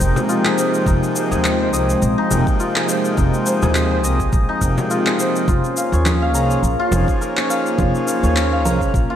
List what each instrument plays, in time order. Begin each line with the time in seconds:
Already playing: harmonium C3, analog synth pad F3 G#3 C4 G5, santur D#4 F4 G#4 C5 D#5
0.00 upright bass F1, harmonium F3 A#3 D#4 G5, kick, cabasa
0.16 frame drum, cabasa
0.29 santur F4, cabasa
0.45 santur G#4, clap, cabasa
0.57 santur C5, cabasa
0.74 cabasa
0.86 upright bass F1, santur D#4, kick, cabasa
1.03 cabasa
1.16 santur C5, cabasa
1.31 upright bass D#2, santur G#4, cabasa
1.44 clap, cabasa
1.60 santur C5
1.72 upright bass C2, harmonium C3 F3 A#3 D#4 G4, santur D#5, cabasa
1.90 cabasa
2.02 upright bass A#1, cabasa
2.18 santur D#4
2.29 upright bass F1, harmonium C3 F3 A#3 D#4, frame drum, cabasa
2.33 harmonium G5
2.47 kick, cabasa
2.60 santur F4, cabasa
2.76 santur G#4, clap, cabasa
2.88 santur C5, cabasa
3.05 cabasa
3.17 upright bass F1, santur D#4, kick, cabasa
3.34 cabasa
3.46 santur C5, cabasa
3.62 upright bass D#2, santur G#4, frame drum, cabasa
3.75 clap, cabasa
3.91 santur C5
4.03 upright bass C2, harmonium C3 F3 A#3 D#4 G4, santur D#5, cabasa
4.20 kick, cabasa
4.33 upright bass A#1, kick, cabasa
4.49 santur D#4
4.59 upright bass F1, harmonium C3 F3 A#3 D#4, kick, cabasa
4.64 harmonium G5
4.78 frame drum, cabasa
4.90 santur F4, cabasa
5.06 santur G#4, clap, cabasa
5.20 santur C5, cabasa
5.36 cabasa
5.48 upright bass F1, analog synth pad A#3 C#4 F4, santur F4, kick, cabasa
5.64 cabasa
5.77 santur F5, cabasa
5.92 upright bass D#2, santur C#5, cabasa
6.06 clap, low conga, cabasa
6.22 santur F5
6.33 upright bass C2, harmonium F3 A#3 D#4 G#4 C#5, santur A#5, cabasa
6.51 cabasa
6.63 upright bass A#1, cabasa
6.79 santur F4
6.90 upright bass F1, harmonium F3 A#3 D#4 G#4 C#5, low conga, frame drum, cabasa
7.08 kick, cabasa
7.21 santur A#4, cabasa
7.37 santur C#5, clap, cabasa
7.50 santur F5, cabasa
7.66 cabasa
7.78 upright bass F1, santur F4, kick, low conga, cabasa
7.95 cabasa
8.07 santur F5, cabasa
8.23 upright bass D#2, santur C#5, cabasa
8.36 clap, cabasa
8.53 santur F5
8.64 upright bass C2, harmonium F3 A#3 D#4 G#4 C#5, santur A#5, low conga, cabasa
8.81 kick, cabasa
8.94 upright bass A#1, kick, cabasa
9.10 santur F4